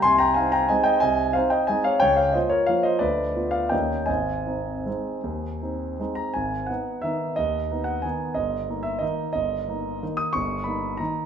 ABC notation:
X:1
M:3/4
L:1/8
Q:1/4=180
K:Ab
V:1 name="Grand piano"
[ac'] [gb] [fa] [gb] [ea] [eg] | [ea]2 [cf] [eg] [ea] [df] | [dg] [df] [ce] [Bd] [df] [ce] | [=B=d]3 [df] [eg]2 |
[ea]6- | [ea]4- [ea] b | [K:G#m] g2 f2 e2 | d3 f g2 |
d3 e d2 | d4 z d' | c'2 b2 a2 |]
V:2 name="Grand piano"
C,,2 [CE]2 [A,CE]2 | C,,2 [CE]2 [A,CE]2 | D,,2 [B,F]2 [F,B,F]2 | =D,,2 [=B,F]2 [E,,_B,_DE]2 |
A,,,2 [CE]2 [A,CE]2 | E,,2 [CE]2 [A,CE]2 | [K:G#m] G,,,2 [B,D]2 [D,B,D]2 | D,,2 [B,D]2 [D,B,D]2 |
=G,,,2 [A,D]2 [D,A,D]2 | =G,,,2 [A,D]2 [D,A,D]2 | =G,,,2 [A,D]2 [D,A,D]2 |]